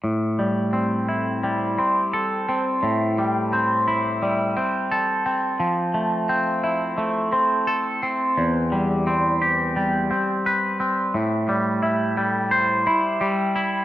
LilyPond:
\new Staff \with { instrumentName = "Clean electric guitar" } { \time 4/4 \key a \minor \tempo 4 = 87 a,8 g8 c'8 e'8 g8 c'8 a'8 c'8 | a,8 g8 c'8 e'8 g8 c'8 a'8 c'8 | f8 a8 c'8 e'8 a8 c'8 a'8 c'8 | e,8 g8 c'8 g'8 g8 c'8 b'8 c'8 |
a,8 g8 e'8 g8 c''8 e'8 g8 e'8 | }